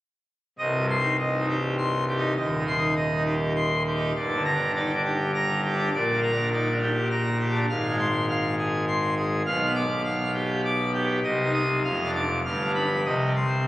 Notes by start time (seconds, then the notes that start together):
0.59 C1 C2 D#5
0.79 G2
0.90 C6
1.00 D#4
1.20 D#5
1.39 D#4
1.49 G4
1.78 C6
2.08 G4
2.18 D#4
2.37 D#1 D#2 D#5
2.57 D#3
2.67 C6
2.78 D#4
2.96 D#5
3.17 D#4
3.26 G4
3.56 C6
3.87 G4
3.96 D#4
4.16 G1 G2 D5
4.35 D3
4.45 A#5
4.55 D4
4.75 D#4 D5
4.96 D4
5.05 G4
5.35 A#5
5.64 G4
5.74 D4
5.94 A#1 A#2 D5
6.13 A#3
6.23 A#5
6.32 D4
6.52 D#4 D5
6.72 D4
6.82 G4
7.11 A#5
7.40 G4
7.49 D4
7.69 G#1 G#2 F5
7.89 G#3
7.99 C6
8.29 F5
8.59 G#4
8.88 C6
9.17 G#4
9.46 B1 B2 F5
9.65 B3
9.75 D6
10.04 F5
10.34 G4
10.65 D6
10.94 G4
11.24 C2 C3 D#5
11.45 D#4
11.54 D#6
11.84 F1 F2 F5
12.05 D4
12.15 D6
12.45 G1 G2 F5
12.65 D4
12.75 B5
13.06 C2 C3 D#5
13.26 G3
13.36 C6
13.47 C4